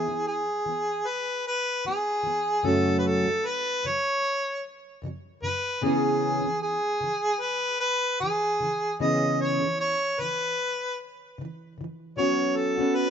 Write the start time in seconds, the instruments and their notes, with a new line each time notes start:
Already playing: harmonica G#4
0.08 steel-string acoustic guitar E3 B3
0.27 harmonica G#4
0.66 steel-string acoustic guitar E3 B3
1.07 harmonica B4
1.47 harmonica B4
1.85 steel-string acoustic guitar E3 B3, harmonica G#4
2.23 steel-string acoustic guitar E3 B3
2.63 steel-string acoustic guitar F#2 C#3 F#3 A3 C#4 F#4, harmonica A4
2.99 harmonica B4
3.07 harmonica A4
3.27 steel-string acoustic guitar C#3
3.46 harmonica B4
3.83 steel-string acoustic guitar F#2 C#3 F#3, harmonica C#5
5.02 steel-string acoustic guitar F#2 C#3 F#3
5.42 steel-string acoustic guitar F#2 C#3 F#3, harmonica B4
5.82 steel-string acoustic guitar C#3 E3 B3 C#4 G#4, harmonica G#4
6.43 steel-string acoustic guitar C#3 E3
6.62 harmonica G#4
7.00 steel-string acoustic guitar C#3 E3
7.41 harmonica B4
7.80 harmonica B4
8.20 steel-string acoustic guitar C#3 E3, harmonica G#4
8.60 steel-string acoustic guitar C#3 E3
9.00 steel-string acoustic guitar C#3 E3 B3 C#4 G#4, harmonica D#5
9.41 harmonica C#5
9.61 steel-string acoustic guitar C#3 E3
9.80 harmonica C#5
10.19 steel-string acoustic guitar C#3 E3, harmonica B4
11.38 steel-string acoustic guitar C#3 E3
11.78 steel-string acoustic guitar C#3 E3
12.17 steel-string acoustic guitar F#3 B3 C#4 F#4, harmonica C#5
12.56 harmonica A4
12.77 steel-string acoustic guitar B3 C#4 F#4
12.96 harmonica B4